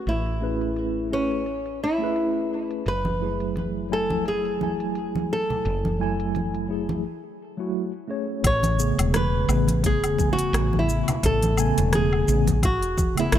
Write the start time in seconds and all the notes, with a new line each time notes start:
Already playing: A3 C#4 G#4 B4
0.07 A1 E4, closed hi-hat
0.26 closed hi-hat
0.40 A3 C#4 G#4 B4
0.61 closed hi-hat
0.76 closed hi-hat
1.10 A3 C#4 G#4 B4
1.31 closed hi-hat
1.46 closed hi-hat
1.66 closed hi-hat
1.84 E4
1.98 A3 C#4 G#4, closed hi-hat
2.04 B4
2.16 closed hi-hat
2.58 D4
2.71 closed hi-hat
2.86 F#1 B4, closed hi-hat
3.05 closed hi-hat, high conga
3.20 F#3 A3 E4 G#4
3.40 closed hi-hat
3.56 closed hi-hat, high conga
3.90 F#3 A3 E4 A4 G#5
4.10 closed hi-hat, high conga
4.26 G#4, closed hi-hat
4.45 closed hi-hat
4.58 F#3 A3 E4, high conga
4.63 G#5
4.80 closed hi-hat
4.95 closed hi-hat
5.16 high conga
5.33 A4
5.50 closed hi-hat, low conga
5.65 F#1, closed hi-hat
5.85 closed hi-hat, high conga
5.98 F#3 A3 E4 G#5
6.20 closed hi-hat
6.35 closed hi-hat, high conga
6.55 closed hi-hat
6.68 F#3 A3 E4 G#4
6.89 closed hi-hat, high conga
7.57 F#3 A3 E4 F#4
8.08 A3 C#4 G#4 C#5
8.44 A1 C#5, kick, closed hi-hat, low woodblock, shaker
8.63 closed hi-hat, high conga, shaker
8.77 C#3 A3 B3 G#4, shaker
8.98 E1, closed hi-hat, low woodblock, shaker
9.14 B4, cross-stick, closed hi-hat, high conga, shaker
9.47 A1 C#3 A3 B3 G#4, low woodblock, shaker
9.68 closed hi-hat, high conga, shaker
9.84 G#4, kick, closed hi-hat, shaker
10.03 E1, closed hi-hat, low woodblock, shaker
10.16 C#3 A3 B3, kick, high conga, shaker
10.21 G#5
10.33 F#4
10.39 closed hi-hat, shaker
10.53 A1, cross-stick, closed hi-hat, low woodblock, shaker
10.73 high conga
10.79 E4
10.89 shaker
11.08 closed hi-hat, low conga, low woodblock, shaker
11.23 A1 A4, kick, closed hi-hat, shaker
11.42 closed hi-hat, high conga, shaker
11.57 C#3 A3 B3 G#5, low woodblock, shaker
11.78 E1, closed hi-hat, shaker
11.93 G#4, cross-stick, closed hi-hat, high conga, shaker
12.13 low woodblock
12.27 A1 C#3 A3 B3 G#4, shaker
12.47 kick, closed hi-hat, high conga, shaker
12.63 F#4, kick, closed hi-hat, low woodblock, shaker
12.83 E1, closed hi-hat, shaker
12.98 kick, high conga, shaker
13.15 C#3 A3 B3, closed hi-hat, low woodblock, shaker
13.20 E4 G#4
13.32 A1 E4, cross-stick, closed hi-hat, shaker